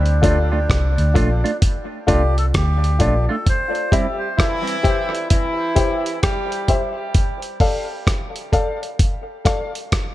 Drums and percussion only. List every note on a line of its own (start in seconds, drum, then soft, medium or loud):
0.06 closed hi-hat soft
0.23 kick loud
0.23 closed hi-hat medium
0.70 kick loud
0.70 cross-stick loud
0.70 closed hi-hat medium
0.98 closed hi-hat soft
1.15 kick medium
1.15 closed hi-hat medium
1.46 closed hi-hat soft
1.62 kick loud
1.62 closed hi-hat medium
2.08 kick loud
2.08 closed hi-hat medium
2.38 closed hi-hat medium
2.54 kick loud
2.54 cross-stick loud
2.54 closed hi-hat medium
2.84 closed hi-hat medium
3.00 kick medium
3.00 closed hi-hat medium
3.47 kick loud
3.47 closed hi-hat medium
3.75 closed hi-hat soft
3.92 kick loud
3.92 closed hi-hat medium
4.39 kick loud
4.39 cross-stick loud
4.39 closed hi-hat medium
4.67 closed hi-hat medium
4.84 kick medium
4.84 closed hi-hat medium
5.15 closed hi-hat soft
5.30 kick loud
5.30 closed hi-hat medium
5.76 kick medium
5.76 closed hi-hat medium
6.06 closed hi-hat medium
6.23 kick loud
6.23 cross-stick loud
6.23 closed hi-hat medium
6.52 closed hi-hat medium
6.68 kick medium
6.68 closed hi-hat medium
7.14 kick loud
7.14 closed hi-hat medium
7.42 closed hi-hat soft
7.60 kick medium
7.60 open hi-hat medium
8.07 kick loud
8.07 cross-stick medium
8.07 closed hi-hat medium
8.36 closed hi-hat medium
8.53 kick medium
8.53 closed hi-hat medium
8.83 closed hi-hat soft
8.99 kick loud
8.99 closed hi-hat medium
9.45 kick medium
9.45 cross-stick medium
9.45 closed hi-hat medium
9.75 closed hi-hat soft
9.92 kick loud
9.92 cross-stick loud
9.92 closed hi-hat medium